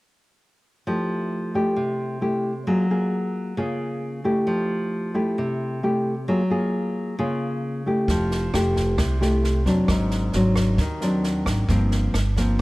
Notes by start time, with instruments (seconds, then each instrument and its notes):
0.87 nylon-string guitar F3 A3 E4 G4
1.54 nylon-string guitar A3 E4 G4
1.76 nylon-string guitar C3
2.21 nylon-string guitar A3 E4 G4
2.67 nylon-string guitar F#3 A#3 F4 G#4
2.90 nylon-string guitar A#3 F4 G#4
3.57 nylon-string guitar C#3 A#3 F4 G#4
4.24 nylon-string guitar A3 E4 G4
4.47 nylon-string guitar F3
5.14 nylon-string guitar A3 E4 G4
5.38 nylon-string guitar C3
5.83 nylon-string guitar A3 E4 G4
6.28 nylon-string guitar F#3 A#3 F4 G#4
6.50 nylon-string guitar A#3 F4 G#4
7.19 nylon-string guitar C#3 A#3 F4 G#4
7.86 nylon-string guitar A3 E4 G4
8.08 upright bass F1, nylon-string guitar F3, kick, snare
8.31 snare
8.54 upright bass F1, nylon-string guitar A3 E4 G4, cross-stick, snare
8.76 kick, snare
8.98 upright bass C2, nylon-string guitar C3, kick, cross-stick, snare
9.21 nylon-string guitar A3 E4 G4, snare
9.44 snare
9.66 upright bass F1, nylon-string guitar F#3 C4 D4, kick, snare
9.88 upright bass G#1, nylon-string guitar G#2, kick, cross-stick, snare
10.11 snare
10.33 upright bass G#1, nylon-string guitar F#3 C4 D4, snare
10.56 kick, cross-stick, snare
10.78 upright bass D#2, nylon-string guitar D#3, kick, snare
11.01 nylon-string guitar F#3 C4 D4, snare
11.24 snare
11.46 upright bass G#1, kick, cross-stick, snare
11.68 upright bass G1, nylon-string guitar G2 F3 A#3 C4, kick, snare
11.91 snare
12.14 upright bass G1, cross-stick, snare
12.36 nylon-string guitar F3 A#3 C4, kick, snare